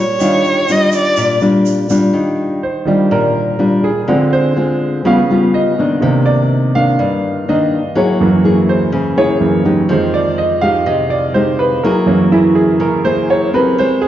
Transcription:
0.00 0.17 A#2 medium
0.00 0.16 D4 soft
0.00 0.15 G4 soft
0.00 0.74 C#5 medium
0.00 0.17 F5 medium
0.18 1.15 D#3 medium
0.18 0.65 G3 medium
0.18 2.10 D4 soft
0.18 0.65 D4 medium
0.18 0.65 F4 medium
0.18 2.09 G4 soft
0.18 shaker medium
0.23 2.11 F5 medium
0.44 shaker soft
0.68 1.38 G3 medium
0.68 1.38 D4 medium
0.68 1.38 F4 medium
0.68 0.94 D#5 medium
0.68 shaker medium
0.92 1.39 D5 medium
0.92 shaker medium
1.17 2.12 A#2 medium
1.17 shaker medium
1.41 1.86 G3 medium
1.41 1.86 D4 medium
1.41 1.86 F4 medium
1.41 shaker soft
1.66 shaker medium
1.90 2.61 G3 medium
1.90 2.61 D4 medium
1.90 2.61 F4 medium
1.90 shaker medium
2.13 3.08 D#3 medium
2.63 3.08 C5 soft
2.85 4.03 D#3 soft
2.85 4.04 G3 soft
2.85 3.56 G3 medium
2.85 4.04 D4 soft
2.85 3.56 D4 medium
2.85 3.56 F4 medium
3.11 4.06 A#2 medium
3.11 3.80 A#4 medium
3.59 3.90 G3 medium
3.59 3.90 D4 medium
3.59 3.91 F4 medium
3.84 4.29 G#4 medium
4.08 5.02 D3 medium
4.08 4.77 D3 soft
4.08 4.77 F3 soft
4.08 4.52 G#3 medium
4.08 4.53 C4 medium
4.08 4.78 C4 soft
4.08 4.53 F4 medium
4.33 4.56 C5 medium
4.56 5.03 G#3 medium
4.56 5.03 C4 medium
4.56 5.03 F4 medium
5.04 5.37 C#3 soft
5.04 6.00 C#3 medium
5.04 5.38 F3 soft
5.04 5.19 G3 medium
5.04 5.19 B3 medium
5.04 5.38 B3 soft
5.04 5.20 F4 medium
5.04 5.51 F5 medium
5.30 5.74 G3 medium
5.30 5.75 B3 medium
5.30 5.75 F4 medium
5.54 6.23 D#5 medium
5.79 6.71 D#3 medium
5.79 6.72 A#3 medium
5.79 6.72 D4 medium
6.01 6.70 C3 soft
6.01 6.97 C3 medium
6.01 6.71 D#3 soft
6.01 6.71 A#3 soft
6.26 6.71 D5 medium
6.75 7.44 D#3 medium
6.75 7.44 A#3 medium
6.75 7.44 D4 medium
6.75 6.98 F5 medium
6.99 7.94 G2 medium
7.48 7.79 D#3 medium
7.48 7.79 A#3 medium
7.48 7.79 D4 medium
7.48 7.93 D#5 medium
7.95 8.90 F#3 medium
7.95 8.27 A#3 medium
7.95 8.27 E4 medium
7.95 8.27 G#4 medium
7.95 8.65 C#5 medium
8.20 8.89 F#2 soft
8.20 8.90 E3 soft
8.20 8.90 A#3 soft
8.44 8.92 A#3 medium
8.44 8.92 E4 medium
8.44 8.93 G#4 medium
8.69 9.14 C5 medium
8.92 9.87 C#3 medium
9.17 9.62 A#3 medium
9.17 9.62 E4 medium
9.17 9.62 G#4 medium
9.17 9.32 C#5 medium
9.41 9.63 F#2 soft
9.41 9.63 E3 soft
9.41 9.63 A#3 soft
9.65 10.58 G#3 medium
9.65 10.59 D#4 medium
9.65 10.59 G4 medium
9.89 11.80 F2 soft
9.89 11.80 D#3 soft
9.89 10.84 F3 medium
9.89 11.80 G#3 soft
9.89 10.14 C5 medium
10.14 10.37 D5 medium
10.38 10.62 D#5 medium
10.61 11.31 G#3 medium
10.61 11.31 D#4 medium
10.61 11.32 G4 medium
10.61 10.85 F5 medium
10.86 11.81 C3 medium
10.86 11.10 D#5 medium
11.10 11.34 D5 medium
11.34 11.80 G#3 medium
11.34 11.80 D#4 medium
11.34 11.80 G4 medium
11.34 11.58 C5 medium
11.59 11.83 B4 medium
11.83 12.79 F#3 medium
11.83 12.28 A#3 medium
11.83 12.29 E4 medium
11.83 12.29 G#4 medium
11.83 12.07 A#4 medium
12.06 13.73 F#2 soft
12.06 13.73 E3 soft
12.06 13.73 A#3 medium
12.06 12.31 C#4 medium
12.32 12.80 A#3 medium
12.32 12.80 E4 medium
12.32 12.56 E4 medium
12.32 12.80 G#4 medium
12.55 12.79 G#4 medium
12.80 13.75 C#3 medium
12.80 13.04 A#4 medium
13.05 13.49 A#3 medium
13.05 13.50 E4 medium
13.05 13.50 G#4 medium
13.05 13.28 C5 medium
13.30 13.53 C#5 medium
13.54 14.08 C4 medium
13.54 14.08 G4 medium
13.54 14.08 A#4 medium
13.54 13.77 B4 medium
13.78 14.08 G#3 medium
13.78 14.02 C5 medium
14.02 14.08 G#4 medium

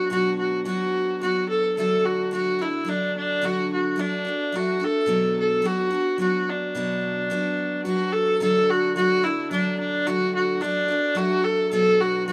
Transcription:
0.00 0.10 F#3 medium
0.00 0.11 B3 medium
0.00 0.12 D4 medium
0.00 0.11 F#4 medium
0.00 0.12 F#4 medium
0.10 0.66 B2 medium
0.10 0.65 F#3 medium
0.10 0.65 B3 medium
0.10 0.67 D4 medium
0.10 0.37 F#4 medium
0.10 0.68 F#4 medium
0.39 0.65 F#4 medium
0.65 1.21 F#3 medium
0.65 1.22 B3 medium
0.65 1.24 D4 medium
0.65 1.18 F#4 medium
0.65 1.24 F#4 medium
1.21 1.78 F#3 soft
1.21 1.78 B3 medium
1.21 1.79 D4 medium
1.21 1.48 F#4 medium
1.21 1.80 F#4 medium
1.49 1.75 A4 medium
1.77 3.41 D3 medium
1.77 2.31 F#3 medium
1.77 2.31 A3 medium
1.77 2.33 D4 medium
1.77 2.34 F#4 medium
1.77 2.07 A4 medium
2.05 2.33 F#4 medium
2.31 2.59 F#3 soft
2.31 2.60 A3 medium
2.31 2.60 D4 medium
2.31 2.63 F#4 medium
2.31 2.58 F#4 medium
2.59 2.85 A3 soft
2.59 2.86 D4 soft
2.59 2.90 E4 medium
2.59 2.87 F#4 soft
2.85 3.42 F#3 medium
2.85 3.42 A3 medium
2.85 3.43 D4 medium
2.85 3.44 F#4 medium
2.89 3.16 D4 medium
3.17 3.47 D4 medium
3.42 3.98 D3 medium
3.42 3.95 F#3 medium
3.42 3.96 A3 medium
3.42 3.98 D4 medium
3.42 3.99 F#4 medium
3.42 3.72 F#4 medium
3.73 4.01 F#4 medium
3.96 4.25 F#3 medium
3.96 4.26 A3 medium
3.96 4.26 D4 medium
3.96 4.57 D4 medium
3.96 4.23 F#4 medium
4.25 4.53 A3 soft
4.25 4.54 D4 soft
4.25 4.53 F#4 soft
4.52 4.81 F#3 medium
4.52 4.81 A3 soft
4.52 4.80 D4 medium
4.52 4.79 F#4 medium
4.52 4.86 F#4 medium
4.80 5.07 A3 soft
4.80 5.07 D4 soft
4.80 5.08 F#4 soft
4.84 5.38 A4 medium
5.06 5.63 B2 medium
5.06 5.61 F#3 medium
5.06 5.62 B3 medium
5.06 5.64 D4 medium
5.06 5.65 F#4 medium
5.40 5.67 A4 medium
5.62 5.91 F#3 soft
5.62 5.91 B3 medium
5.62 5.91 D4 medium
5.62 5.89 F#4 medium
5.62 6.20 F#4 medium
5.91 6.18 B3 soft
5.91 6.19 D4 soft
5.91 6.19 F#4 soft
6.18 6.75 F#3 soft
6.18 6.75 B3 medium
6.18 6.77 D4 medium
6.18 6.51 F#4 medium
6.18 6.77 F#4 medium
6.50 7.84 D4 medium
6.75 7.30 B2 medium
6.75 7.29 F#3 medium
6.75 7.30 B3 medium
6.75 7.30 D4 medium
6.75 7.31 F#4 medium
7.30 7.84 F#3 medium
7.30 7.85 B3 medium
7.30 7.85 D4 medium
7.30 7.87 F#4 medium
7.85 8.40 F#3 medium
7.85 8.41 B3 medium
7.85 8.41 D4 medium
7.85 8.14 F#4 medium
7.85 8.42 F#4 medium
8.13 8.41 A4 medium
8.40 10.06 D3 medium
8.40 8.95 F#3 medium
8.40 8.96 A3 medium
8.40 8.98 D4 medium
8.40 8.98 F#4 medium
8.40 8.72 A4 medium
8.70 8.96 F#4 medium
8.96 9.24 F#3 medium
8.96 9.24 A3 medium
8.96 9.23 D4 medium
8.96 9.26 F#4 loud
8.96 9.22 F#4 medium
9.23 9.50 A3 soft
9.23 9.52 D4 soft
9.23 9.51 E4 medium
9.23 9.51 F#4 soft
9.51 10.07 F#3 medium
9.51 10.06 A3 medium
9.51 9.77 D4 medium
9.51 10.08 D4 medium
9.51 10.09 F#4 medium
9.80 10.08 D4 medium
10.07 10.62 D3 medium
10.07 10.60 F#3 medium
10.07 10.61 A3 medium
10.07 10.63 D4 medium
10.07 10.34 F#4 loud
10.07 10.64 F#4 medium
10.35 10.63 F#4 medium
10.61 10.89 F#3 medium
10.61 10.90 A3 medium
10.61 11.18 D4 medium
10.61 10.89 D4 medium
10.61 10.87 F#4 medium
10.88 11.15 A3 soft
10.88 11.16 D4 soft
10.88 11.17 F#4 soft
11.15 11.72 F#3 medium
11.15 11.72 A3 medium
11.15 11.73 D4 medium
11.15 11.46 F#4 loud
11.15 11.74 F#4 medium
11.45 11.71 A4 medium
11.72 12.28 B2 medium
11.72 12.27 F#3 medium
11.72 12.28 B3 medium
11.72 12.30 D4 medium
11.72 12.31 F#4 medium
11.72 12.02 A4 medium
12.00 12.27 F#4 medium
12.27 12.32 F#3 medium
12.27 12.32 B3 medium
12.27 12.32 F#4 medium

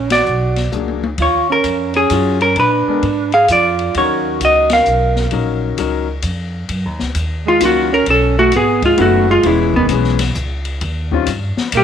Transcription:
0.00 0.25 A#1 medium
0.00 0.10 C#4 medium
0.00 0.12 A#4 medium
0.10 0.69 F#4 medium
0.10 0.70 D5 medium
0.10 snare medium
0.10 ride medium
0.26 0.72 B1 medium
0.26 hi-hat pedal soft
0.56 snare soft
0.56 ride soft
0.72 1.17 C#2 medium
0.72 1.00 F#3 soft
0.72 1.00 A#3 soft
0.72 1.00 D4 soft
0.72 1.01 G#4 medium
0.72 hi-hat pedal medium
0.72 high tom soft
0.88 high tom soft
1.03 high tom medium
1.18 1.63 D#2 medium
1.18 1.48 F4 medium
1.18 kick medium
1.18 ride medium
1.22 1.50 C#5 medium
1.50 1.92 C#4 medium
1.50 1.94 A#4 medium
1.64 2.09 F2 medium
1.64 kick soft
1.64 hi-hat pedal soft
1.64 ride soft
1.94 2.38 C#4 medium
1.94 2.39 G#4 medium
1.94 ride soft
2.10 2.55 F#2 medium
2.10 2.38 F#3 medium
2.10 2.38 C#4 medium
2.10 2.39 F4 soft
2.10 2.39 G#4 medium
2.10 kick soft
2.10 hi-hat pedal medium
2.10 ride medium
2.41 2.56 C#4 medium
2.41 2.57 A#4 medium
2.41 ride soft
2.56 2.85 A#2 medium
2.56 3.29 D4 medium
2.56 3.30 B4 medium
2.56 kick soft
2.56 ride soft
2.87 3.02 G#3 medium
2.87 3.02 B3 medium
2.87 3.02 D4 medium
2.87 3.03 A#4 medium
2.87 muted upright bass stroke soft
3.02 3.47 G#2 medium
3.02 kick soft
3.02 ride soft
3.32 3.48 G#4 medium
3.32 3.49 F5 loud
3.32 ride soft
3.48 3.93 F2 medium
3.48 3.92 F4 medium
3.48 kick soft
3.48 hi-hat pedal medium
3.48 ride medium
3.52 3.93 D5 medium
3.79 ride soft
3.94 4.39 D#2 medium
3.94 5.24 F#3 medium
3.94 5.24 C#4 soft
3.94 5.24 D#4 soft
3.94 4.38 F#4 medium
3.94 5.24 A#4 medium
3.94 4.39 C#5 medium
3.94 kick soft
3.94 ride medium
4.40 4.85 C#2 medium
4.40 4.70 F#4 medium
4.40 kick soft
4.40 hi-hat pedal soft
4.40 ride medium
4.45 4.72 D#5 medium
4.70 5.29 A#4 medium
4.70 5.29 F5 medium
4.70 snare medium
4.70 ride medium
4.85 5.31 B1 medium
4.85 hi-hat pedal soft
5.16 snare soft
5.31 5.77 A#1 medium
5.31 5.76 F#3 soft
5.31 5.77 C#4 soft
5.31 5.77 D#4 soft
5.31 5.77 A#4 medium
5.31 kick soft
5.31 ride soft
5.77 6.22 C#2 medium
5.77 6.05 F#3 medium
5.77 6.05 C#4 soft
5.77 6.06 D#4 medium
5.77 6.06 A#4 medium
5.77 kick soft
5.77 hi-hat pedal soft
5.77 ride medium
6.22 6.68 F2 medium
6.22 kick soft
6.22 hi-hat pedal soft
6.22 ride medium
6.69 6.85 F#2 medium
6.69 kick soft
6.69 ride medium
6.85 7.00 D#2 medium
6.99 7.14 C#2 medium
6.99 snare soft
7.15 7.60 D#2 medium
7.15 kick soft
7.15 hi-hat pedal medium
7.15 ride medium
7.46 7.61 G#3 medium
7.46 7.62 F4 medium
7.60 8.06 C#2 medium
7.60 7.88 D#3 medium
7.60 7.88 F#3 medium
7.60 7.88 A#3 medium
7.60 7.90 A#3 medium
7.60 7.88 C#4 medium
7.60 7.89 F4 medium
7.60 kick soft
7.60 hi-hat pedal medium
7.60 ride medium
7.65 7.93 F#4 medium
7.92 8.06 C#4 medium
7.92 8.08 A#4 loud
8.06 8.51 B1 medium
8.06 8.36 C#4 medium
8.06 kick soft
8.06 ride medium
8.10 8.38 A4 medium
8.39 8.53 A3 medium
8.39 8.53 F#4 medium
8.52 8.97 G#1 medium
8.52 8.82 B3 medium
8.52 kick soft
8.52 hi-hat pedal soft
8.52 ride medium
8.57 8.84 G#4 medium
8.82 8.98 G#3 medium
8.82 9.00 F4 medium
8.82 kick medium
8.82 ride soft
8.97 9.43 F#1 medium
8.97 9.25 D#3 medium
8.97 9.26 A3 medium
8.97 9.28 A3 medium
8.97 9.25 B3 medium
8.97 9.26 C#4 medium
8.97 9.26 F#4 medium
8.97 kick soft
8.97 ride medium
9.02 9.30 F#4 medium
9.29 9.46 G#3 medium
9.29 9.46 F4 medium
9.43 9.88 E1 medium
9.43 9.88 E3 medium
9.43 9.88 G#3 medium
9.43 9.75 G#3 medium
9.43 9.89 B3 medium
9.43 9.89 C#4 medium
9.43 9.75 E4 medium
9.43 9.90 G#4 medium
9.43 kick soft
9.43 ride medium
9.74 9.90 D#3 medium
9.74 9.85 B3 medium
9.74 kick medium
9.89 10.34 B1 medium
9.89 10.17 E3 medium
9.89 10.17 G#3 medium
9.89 10.17 B3 medium
9.89 10.18 C#4 medium
9.89 10.18 G#4 medium
9.89 kick soft
9.89 hi-hat pedal soft
9.89 ride medium
10.04 snare soft
10.19 snare soft
10.19 ride medium
10.35 10.80 C#2 medium
10.35 kick soft
10.35 hi-hat pedal medium
10.65 ride soft
10.81 11.26 D#2 medium
10.81 kick soft
10.81 ride medium
11.11 11.26 D#3 medium
11.11 11.27 G3 medium
11.11 11.27 C4 medium
11.11 11.27 C#4 medium
11.11 11.27 F4 medium
11.11 kick soft
11.26 11.55 G2 medium
11.26 kick soft
11.26 hi-hat pedal medium
11.26 ride medium
11.57 muted upright bass stroke soft
11.57 snare medium
11.72 11.84 A#2 medium
11.72 11.84 A#3 medium
11.72 kick soft
11.72 hi-hat pedal medium
11.72 ride medium
11.77 11.84 G3 medium
11.77 11.84 G4 medium

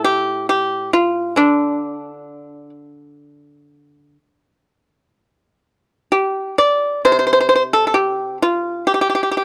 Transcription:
0.00 1.37 A2 soft
0.04 0.46 G4 medium
0.49 0.90 G4 medium
0.93 1.34 F4 medium
1.36 4.16 D3 soft
1.36 2.69 D4 medium
6.12 6.55 G4 medium
6.58 7.01 D5 medium
7.05 9.45 C3 soft
7.05 7.11 C5 medium
7.12 7.18 C5 medium
7.19 7.25 C5 medium
7.27 7.32 C5 soft
7.33 7.39 C5 soft
7.41 7.47 C5 soft
7.49 7.54 C5 medium
7.55 7.62 C5 soft
7.73 7.86 A4 medium
7.87 7.95 A4 soft
7.94 8.37 G4 medium
8.42 8.84 F4 medium
8.87 8.93 G4 medium
8.94 9.00 G4 soft
9.01 9.08 G4 soft
9.10 9.14 G4 soft
9.15 9.22 G4 soft
9.23 9.29 G4 soft
9.31 9.36 G4 soft
9.37 9.43 G4 soft

